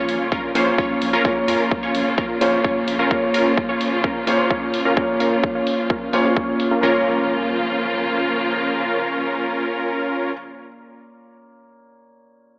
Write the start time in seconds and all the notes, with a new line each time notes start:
Already playing: A#2 C#3 F3 A#3 C#4 F4 C#5, impact
0.09 A#1, open hi-hat
0.32 A#1 C#4 F4 A#4, kick
0.55 A#1 A#2 A#3 C#4 F4 C5 C#5, open hi-hat
0.78 A#1 C#4 F4 C#5, kick
0.90 A#1
1.02 A#1, open hi-hat
1.13 C#4 F4 A#4
1.24 A#1 A#2 A#3 C#4 F4 A#4 C#5, kick
1.48 F2 C#4 F4 A#4, open hi-hat
1.71 A#1, kick
1.83 C#4 F4 C#5
1.95 A#1, open hi-hat
2.18 A#1 C#4 F4 A#4, kick
2.41 A#1 A#2 A#3 C#4 F4 C5 C#5, open hi-hat
2.64 A#1 C#4 F4 C#5, kick
2.76 A#1
2.88 A#1, open hi-hat
2.99 C#4 F4 A#4
3.10 A#2 A#3 C#4 F4 A#4 C#5, kick
3.34 C#4 F4 A#4, open hi-hat
3.57 kick
3.69 C#4 F4 C#5
3.81 open hi-hat
4.04 C#4 F4 A#4, kick
4.27 A#2 A#3 C#4 F4 C5 C#5, open hi-hat
4.50 C#4 F4 C#5, kick
4.74 open hi-hat
4.85 C#4 F4 A#4
4.96 A#2 A#3 C#4 F4 A#4 C#5, kick
5.20 C#4 F4 A#4, open hi-hat
5.44 kick
5.55 C#4 F4 C#5
5.67 open hi-hat
5.90 C#4 F4 A#4, kick
6.13 A#2 A#3 C#4 F4 C5 C#5, open hi-hat
6.24 A#2 A#3 C#4 F4 C#5
6.36 C#4 F4 C#5, kick
6.60 open hi-hat
6.71 C#4 F4 A#4
6.81 C#3 F3 A#3 C#4 F4 A#4 C#5, impact